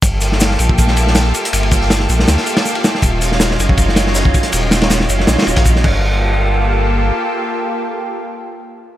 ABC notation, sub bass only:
X:1
M:4/4
L:1/16
Q:"Swing 16ths" 1/4=160
K:Eb
V:1 name="Sub bass" clef=bass
G,,,6 B,,,8 z2 | G,,,6 B,,,2 D,, z6 z | E,,,6 _G,,,8 z2 | E,,,6 _G,,,2 B,,, z E,,, B,,,3 =G,,,2- |
G,,,12 z4 | z16 |]